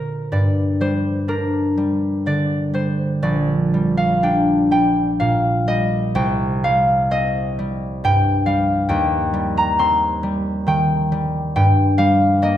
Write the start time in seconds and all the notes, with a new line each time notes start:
Already playing: A#2 D3 A#3 F4 A#4 C5 D5
0.32 G2 D5
0.81 G3 C5
1.28 D4 A#4
1.77 G3
2.26 D3 D5
2.74 G3 C5
3.23 A#1 D5
3.74 G3
3.97 F5
4.23 D4 G5
4.71 G3 G5
5.20 A#2 F5
5.67 G3 D#5
6.15 C2 G5
6.64 G3 F5
7.11 C4 D#5
7.59 G3
8.04 G2 G5
8.46 G3 F5
8.89 D#2 G5
9.34 G3
9.57 A#5
9.79 C4 C6
10.23 G3
10.67 D#3 G5
11.12 G3
11.56 G2 G5
11.98 G3 F5
12.42 A#3 D#5